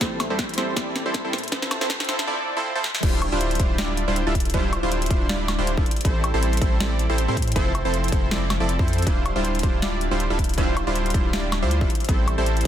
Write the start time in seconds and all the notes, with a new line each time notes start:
0.01 A1 G3 C4 E4 A4 C5, kick, snare, closed hi-hat
0.20 snare, closed hi-hat, high woodblock
0.30 A1 G3 C4 E4 A4 C5
0.39 kick, snare, closed hi-hat
0.49 closed hi-hat
0.54 A4, closed hi-hat
0.58 A1 G3 C4 E4 C5, snare, closed hi-hat
0.76 A1 G3 C4 E4 A4 D5, kick, snare, closed hi-hat
0.96 snare, closed hi-hat
1.06 A1 G3 C4 E4 A4 C5
1.14 kick, snare, closed hi-hat
1.25 A2 G3 C4 E4 A4 C5
1.33 snare, closed hi-hat
1.38 closed hi-hat
1.44 closed hi-hat
1.48 closed hi-hat
1.52 F1 F3 C4 E4 A4 C5, kick, snare, closed hi-hat
1.62 snare
1.71 snare, closed hi-hat, high woodblock
1.81 F1 F3 C4 E4 A4 C5, snare
1.90 kick, snare, closed hi-hat
2.00 snare, closed hi-hat
2.04 closed hi-hat
2.08 F1 F3 C4 E4 A4 C5, snare, closed hi-hat
2.19 snare
2.27 F3 C4 E4 A4 D5
2.57 F3 C4 E4 A4 C5
2.75 F3 C4 E4 A4 C5
2.84 snare
2.95 snare
3.03 D1 G3 D4 E4 F4 C5, kick, closed hi-hat, crash
3.22 closed hi-hat, high woodblock
3.32 D1 G3 D4 E4 F4 C5
3.41 closed hi-hat
3.51 closed hi-hat
3.55 closed hi-hat
3.59 D1 G3 D4 E4 F4 C5, kick, closed hi-hat
3.78 D1 G3 D4 E4 F4 D5, snare, closed hi-hat
3.97 closed hi-hat
4.08 D1 G3 D4 E4 F4 C5
4.16 closed hi-hat
4.27 D1 G3 D4 E4 F4 A4
4.35 kick, closed hi-hat
4.40 closed hi-hat
4.45 closed hi-hat
4.50 closed hi-hat
4.54 D1 G3 D4 E4 F4 C5, kick, closed hi-hat
4.73 closed hi-hat, high woodblock
4.83 D1 G3 D4 E4 F4 C5
4.92 closed hi-hat
5.02 closed hi-hat
5.06 closed hi-hat
5.10 D1 G3 D4 E4 F4 C5, kick, closed hi-hat
5.29 D1 G3 D4 E4 F4 D5, snare, closed hi-hat
5.48 snare, closed hi-hat, high woodblock
5.58 D1 G3 D4 E4 F4 C5
5.67 closed hi-hat
5.77 D1 G3 D4 E4 F4 A4, kick
5.86 closed hi-hat
5.91 closed hi-hat
5.96 closed hi-hat
6.01 closed hi-hat
6.05 A1 G3 C4 E4 A4 C5, kick, closed hi-hat
6.24 closed hi-hat, high woodblock
6.34 A1 G3 C4 E4 A4 C5
6.43 closed hi-hat
6.53 closed hi-hat
6.57 closed hi-hat
6.61 A1 G3 C4 E4 A4 C5, kick, closed hi-hat
6.80 A1 G3 C4 E4 A4 D5, snare, closed hi-hat
6.99 closed hi-hat
7.10 A1 G3 C4 E4 A4 C5
7.18 closed hi-hat
7.28 A2 G3 C4 E4 A4 C5
7.37 kick, closed hi-hat
7.42 closed hi-hat
7.48 closed hi-hat
7.52 closed hi-hat
7.56 F1 F3 C4 E4 A4 C5, kick, closed hi-hat
7.75 closed hi-hat, high woodblock
7.85 F1 F3 C4 E4 A4 C5
7.94 closed hi-hat
8.04 closed hi-hat
8.08 closed hi-hat
8.12 F1 F3 C4 E4 A4 C5, kick, closed hi-hat
8.31 F1 F3 C4 E4 A4 D5, snare, closed hi-hat
8.50 snare, closed hi-hat, high woodblock
8.60 F1 F3 C4 E4 A4 D5
8.69 closed hi-hat
8.79 F2 F3 C4 E4 A4 C5, kick
8.88 closed hi-hat
8.93 closed hi-hat
8.98 closed hi-hat
9.02 closed hi-hat
9.07 D1 G3 D4 E4 F4 C5, kick, closed hi-hat
9.26 closed hi-hat, high woodblock
9.36 D1 G3 D4 E4 F4 C5
9.45 closed hi-hat
9.55 closed hi-hat
9.59 E4 F4, closed hi-hat
9.63 D1 G3 D4 C5, kick, closed hi-hat
9.82 D1 G3 D4 E4 F4 D5, snare, closed hi-hat
10.01 closed hi-hat
10.11 D1 G3 D4 E4 F4 C5
10.20 closed hi-hat
10.30 D1 G3 D4 E4 F4 A4
10.39 kick, closed hi-hat
10.44 closed hi-hat
10.49 closed hi-hat
10.54 closed hi-hat
10.58 D1 G3 D4 E4 F4 C5, kick, closed hi-hat
10.77 closed hi-hat, high woodblock
10.87 D1 G3 D4 E4 F4 C5
10.96 closed hi-hat
11.06 closed hi-hat
11.10 D1, kick, closed hi-hat
11.14 G3 D4 E4 F4 C5, closed hi-hat
11.33 D1 G3 D4 E4 F4 D5, snare, closed hi-hat
11.52 snare, closed hi-hat, high woodblock
11.62 D2 G3 D4 E4 F4 C5
11.71 closed hi-hat
11.81 D1 G3 D4 E4 F4 A4, kick
11.90 closed hi-hat
11.95 closed hi-hat
12.00 closed hi-hat
12.05 closed hi-hat
12.09 A1 G3 C4 E4 A4 C5, kick, closed hi-hat
12.28 closed hi-hat, high woodblock
12.38 A1 G3 C4 E4 A4 C5
12.46 closed hi-hat
12.57 closed hi-hat
12.61 closed hi-hat